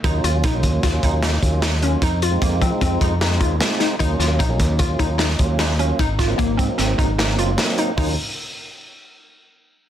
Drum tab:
HH |xxxxxxxxxx|xxxxxxxxxx|xxxxxxxxxx|xxxxxxxxxx|
SD |----o-o-o-|------o-oo|-o----o-o-|-o--o-o-o-|
BD |o-oooo-o--|o-oooo-o--|o-oooo-o--|oooo-o----|

HH |o---------|
SD |----------|
BD |o---------|